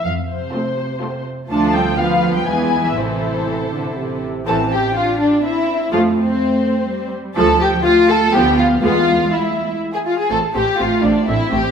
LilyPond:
<<
  \new Staff \with { instrumentName = "Violin section" } { \time 3/4 \key a \minor \tempo 4 = 123 f''8 c''2 r8 | a''8 g''8 f''8. g''16 gis''8. e''16 | c''2~ c''8 r8 | a''8 g''8 f''8 d''8 e''4 |
f''8 c''2 r8 | a''8 g''8 f''8 a''8 g''8 f''8 | f''4 e''4 r16 gis''16 f''16 gis''16 | a''8 g''8 f''8 d''8 e''8 g''8 | }
  \new Staff \with { instrumentName = "Violin section" } { \time 3/4 \key a \minor r4 <f' a'>4 <f' a'>4 | <f' a'>4 <f' b'>4 <e' b'>4 | <e' a'>2~ <e' a'>8 r8 | a'8 g'8 f'8 d'8 e'4 |
f'8 c'2 r8 | a'8 g'8 f'8 a'8 g'8 f'8 | f'4 e'4 r16 gis'16 f'16 gis'16 | a'8 g'8 f'8 d'8 e'8 g'8 | }
  \new Staff \with { instrumentName = "Viola section" } { \time 3/4 \key a \minor << { r4 c'4 c'4 | d'8 c'8 b4 b4 | c'4 e8 d8 c4 | c'8 r2 r8 |
a8 r2 r8 | a8 r4. b8 r8 | b8 r2 r8 | c'8 c'8 c'8 c'8 c'8 c'8 | } \\ { r4 a4 a4 | f4 f4 e4 | e4 r2 | e8 r2 r8 |
f8 r2 r8 | f8 r4. f8 r8 | gis8 r2 r8 | a8 a8 a8 a8 a8 a8 | } >> }
  \new Staff \with { instrumentName = "Cello section" } { \clef bass \time 3/4 \key a \minor f8 c2 r8 | a8 g8 f8. g16 gis8. e16 | c2~ c8 r8 | c'4 d'4 c'4 |
a4 a4 g4 | f4 a4 b4 | gis2~ gis8 r8 | r4 a4 c'4 | }
  \new Staff \with { instrumentName = "Double bass section" } { \clef bass \time 3/4 \key a \minor f,4 r2 | d,2 e,4 | a,,2~ a,,8 r8 | a,,4 r2 |
f,4 r2 | d,4 r4 d,4 | e,4 r2 | a,,8 a,,8 a,,8 a,,8 a,,8 a,,8 | }
>>